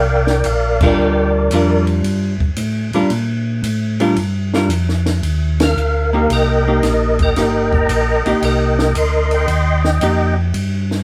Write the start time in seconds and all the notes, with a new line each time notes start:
Already playing: C2 A#4 D5 F5 G5
0.27 snare
0.44 A#1 F5, hi-hat pedal, ride
0.81 G3 D4 F4 A#4 D5 G5, kick, crash
0.98 D2
1.51 F2 G3 D4 F4 A#4, hi-hat pedal, ride
1.87 ride
2.03 G2, ride
2.40 G2, kick
2.57 A2, hi-hat pedal, ride
2.93 A2 G3 D4 F4 A#4, ride
3.10 A#2, ride
3.63 A2, hi-hat pedal, ride
4.00 G3 D4 F4 A#4, ride
4.16 G2, ride
4.54 G3 D4 F4 A#4, snare
4.69 F2, hi-hat pedal, ride
4.89 snare
5.06 snare, ride
5.22 D#2, ride
5.60 A#4 F5, snare, ride
5.76 D2, hi-hat pedal
6.13 A#3 D#4 G4 F5
6.30 C2 A#4 D#5 G5, ride
6.68 A#3 D#4 G4
6.83 A#1, snare, hi-hat pedal, ride
7.19 A#4 G5, kick, ride
7.23 D#5
7.36 G1 A#3 D#4 G4, snare, ride
7.73 D#5 G5 A#5, kick
7.89 A#1, hi-hat pedal, ride
8.26 A#1 A#3 D#4 G4, ride
8.42 C2 A#4 D#5 G5, ride
8.79 snare
8.95 D2 C6, hi-hat pedal, ride
9.31 D#5 G5 C6, ride
9.48 D#2, ride
9.84 snare
10.01 F2 A#3 D#4 G4, hi-hat pedal, ride
10.54 G2, ride
10.91 snare